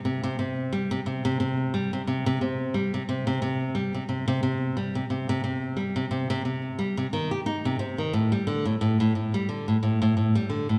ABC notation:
X:1
M:4/4
L:1/16
Q:"Swing 16ths" 1/4=89
K:Cdor
V:1 name="Nylon-string guitar" clef=bass
C, C, C,2 G, C, C, C, C,2 G, C, C, C, C,2 | G, C, C, C, C,2 G, C, C, C, C,2 G, C, C, C, | C,2 G, C, C, C, C,2 G, C, E, G E C, C, E, | A,, G, D, A,, A,, A,, A,, G, D, A,, A,, A,, A,, G, D, A,, |]